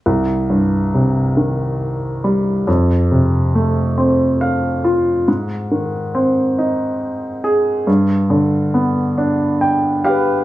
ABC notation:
X:1
M:6/8
L:1/8
Q:3/8=46
K:Cm
V:1 name="Bansuri"
z6 | z6 | z6 | z4 z =B |]
V:2 name="Grand piano"
z6 | z4 f2 | z6 | z4 g f |]
V:3 name="Grand piano" clef=bass
C,, G,, C, E,2 G, | F,, C, =A, C2 F | A,, E, C E2 A | G,, D, =B, D2 G |]